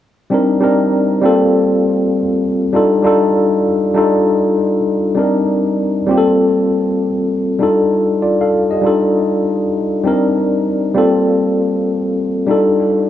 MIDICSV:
0, 0, Header, 1, 2, 480
1, 0, Start_track
1, 0, Tempo, 607903
1, 254, Time_signature, 4, 2, 24, 8
1, 10341, End_track
2, 0, Start_track
2, 0, Title_t, "Tine electric piano"
2, 0, Program_c, 0, 4
2, 237, Note_on_c, 0, 55, 70
2, 244, Note_on_c, 0, 60, 64
2, 250, Note_on_c, 0, 62, 65
2, 261, Note_on_c, 0, 63, 63
2, 268, Note_on_c, 0, 70, 75
2, 413, Control_c, 0, 64, 127
2, 419, Note_off_c, 0, 55, 0
2, 422, Note_off_c, 0, 60, 0
2, 425, Note_off_c, 0, 62, 0
2, 430, Note_off_c, 0, 63, 0
2, 434, Note_off_c, 0, 70, 0
2, 474, Note_on_c, 0, 55, 77
2, 485, Note_on_c, 0, 60, 62
2, 490, Note_on_c, 0, 62, 66
2, 499, Note_on_c, 0, 63, 59
2, 502, Note_on_c, 0, 70, 77
2, 948, Note_off_c, 0, 55, 0
2, 957, Note_on_c, 0, 55, 84
2, 963, Note_off_c, 0, 60, 0
2, 969, Note_on_c, 0, 58, 75
2, 971, Note_off_c, 0, 62, 0
2, 972, Note_on_c, 0, 60, 71
2, 975, Note_off_c, 0, 63, 0
2, 977, Note_off_c, 0, 70, 0
2, 984, Control_c, 0, 64, 0
2, 985, Note_on_c, 0, 65, 74
2, 990, Note_on_c, 0, 69, 92
2, 1115, Control_c, 0, 64, 127
2, 1739, Note_off_c, 0, 55, 0
2, 1745, Note_off_c, 0, 58, 0
2, 1746, Note_off_c, 0, 60, 0
2, 1753, Note_off_c, 0, 65, 0
2, 1756, Note_off_c, 0, 69, 0
2, 2152, Note_on_c, 0, 55, 71
2, 2161, Note_on_c, 0, 62, 62
2, 2165, Note_on_c, 0, 63, 66
2, 2173, Note_on_c, 0, 65, 68
2, 2181, Control_c, 0, 64, 0
2, 2181, Note_on_c, 0, 69, 78
2, 2311, Control_c, 0, 64, 127
2, 2334, Note_off_c, 0, 55, 0
2, 2339, Note_off_c, 0, 62, 0
2, 2340, Note_off_c, 0, 63, 0
2, 2344, Note_off_c, 0, 65, 0
2, 2348, Note_off_c, 0, 69, 0
2, 2389, Note_on_c, 0, 55, 69
2, 2398, Note_on_c, 0, 62, 60
2, 2403, Note_on_c, 0, 63, 67
2, 2409, Note_on_c, 0, 65, 68
2, 2420, Note_on_c, 0, 69, 82
2, 2880, Note_off_c, 0, 55, 0
2, 2885, Note_off_c, 0, 62, 0
2, 2887, Note_off_c, 0, 63, 0
2, 2890, Note_off_c, 0, 65, 0
2, 2896, Note_off_c, 0, 69, 0
2, 3112, Note_on_c, 0, 55, 71
2, 3116, Note_on_c, 0, 62, 64
2, 3127, Note_on_c, 0, 63, 66
2, 3138, Note_on_c, 0, 65, 63
2, 3139, Control_c, 0, 64, 0
2, 3140, Note_on_c, 0, 69, 75
2, 3276, Control_c, 0, 64, 127
2, 3773, Note_off_c, 0, 55, 0
2, 3775, Note_off_c, 0, 62, 0
2, 3781, Note_off_c, 0, 63, 0
2, 3786, Note_off_c, 0, 65, 0
2, 3788, Note_off_c, 0, 69, 0
2, 4064, Note_on_c, 0, 55, 65
2, 4071, Note_on_c, 0, 60, 55
2, 4083, Note_on_c, 0, 62, 63
2, 4087, Note_on_c, 0, 63, 61
2, 4097, Control_c, 0, 64, 0
2, 4098, Note_on_c, 0, 70, 71
2, 4256, Control_c, 0, 64, 127
2, 4729, Note_off_c, 0, 55, 0
2, 4733, Note_off_c, 0, 60, 0
2, 4739, Note_off_c, 0, 62, 0
2, 4741, Note_off_c, 0, 63, 0
2, 4746, Note_off_c, 0, 70, 0
2, 4790, Note_on_c, 0, 55, 72
2, 4799, Note_on_c, 0, 58, 64
2, 4805, Note_on_c, 0, 60, 70
2, 4810, Note_on_c, 0, 65, 65
2, 4818, Control_c, 0, 64, 0
2, 4823, Note_on_c, 0, 67, 70
2, 4874, Note_off_c, 0, 67, 0
2, 4875, Note_on_c, 0, 69, 89
2, 4936, Control_c, 0, 64, 127
2, 5574, Note_off_c, 0, 55, 0
2, 5578, Note_off_c, 0, 58, 0
2, 5581, Note_off_c, 0, 60, 0
2, 5584, Note_off_c, 0, 65, 0
2, 5616, Note_off_c, 0, 69, 0
2, 5992, Note_on_c, 0, 55, 65
2, 5998, Note_on_c, 0, 62, 59
2, 6005, Note_on_c, 0, 63, 63
2, 6013, Note_on_c, 0, 65, 62
2, 6017, Control_c, 0, 64, 0
2, 6023, Note_on_c, 0, 69, 80
2, 6165, Control_c, 0, 64, 127
2, 6486, Note_off_c, 0, 65, 0
2, 6494, Note_on_c, 0, 74, 57
2, 6495, Note_off_c, 0, 69, 0
2, 6495, Note_on_c, 0, 65, 49
2, 6623, Note_off_c, 0, 74, 0
2, 6624, Note_off_c, 0, 65, 0
2, 6641, Note_on_c, 0, 77, 59
2, 6646, Note_on_c, 0, 69, 52
2, 6654, Note_off_c, 0, 55, 0
2, 6657, Note_off_c, 0, 62, 0
2, 6661, Note_off_c, 0, 63, 0
2, 6862, Note_off_c, 0, 77, 0
2, 6865, Note_off_c, 0, 69, 0
2, 6875, Note_on_c, 0, 75, 54
2, 6884, Note_on_c, 0, 67, 39
2, 6962, Note_on_c, 0, 55, 68
2, 6975, Note_on_c, 0, 62, 65
2, 6978, Control_c, 0, 64, 0
2, 6982, Note_on_c, 0, 63, 60
2, 6988, Note_on_c, 0, 65, 64
2, 6999, Note_on_c, 0, 69, 76
2, 7099, Note_off_c, 0, 75, 0
2, 7102, Control_c, 0, 64, 127
2, 7104, Note_off_c, 0, 67, 0
2, 7620, Note_off_c, 0, 55, 0
2, 7626, Note_off_c, 0, 62, 0
2, 7630, Note_off_c, 0, 63, 0
2, 7633, Note_off_c, 0, 65, 0
2, 7639, Note_off_c, 0, 69, 0
2, 7925, Note_on_c, 0, 55, 69
2, 7933, Note_on_c, 0, 60, 68
2, 7939, Note_on_c, 0, 62, 61
2, 7940, Control_c, 0, 64, 0
2, 7946, Note_on_c, 0, 63, 59
2, 7955, Note_on_c, 0, 70, 81
2, 8094, Control_c, 0, 64, 127
2, 8583, Note_off_c, 0, 55, 0
2, 8587, Note_off_c, 0, 60, 0
2, 8590, Note_off_c, 0, 62, 0
2, 8593, Note_off_c, 0, 63, 0
2, 8598, Note_off_c, 0, 70, 0
2, 8641, Note_on_c, 0, 55, 78
2, 8646, Note_on_c, 0, 58, 68
2, 8653, Note_on_c, 0, 60, 69
2, 8660, Control_c, 0, 64, 0
2, 8663, Note_on_c, 0, 65, 67
2, 8670, Note_on_c, 0, 69, 89
2, 8787, Control_c, 0, 64, 127
2, 9424, Note_off_c, 0, 55, 0
2, 9426, Note_off_c, 0, 58, 0
2, 9430, Note_off_c, 0, 60, 0
2, 9435, Note_off_c, 0, 65, 0
2, 9438, Note_off_c, 0, 69, 0
2, 9844, Note_on_c, 0, 55, 70
2, 9852, Note_on_c, 0, 62, 60
2, 9857, Note_on_c, 0, 63, 62
2, 9863, Note_on_c, 0, 65, 61
2, 9864, Control_c, 0, 64, 0
2, 9877, Note_on_c, 0, 69, 79
2, 9997, Control_c, 0, 64, 127
2, 10341, Note_off_c, 0, 55, 0
2, 10341, Note_off_c, 0, 62, 0
2, 10341, Note_off_c, 0, 63, 0
2, 10341, Note_off_c, 0, 65, 0
2, 10341, Note_off_c, 0, 69, 0
2, 10341, End_track
0, 0, End_of_file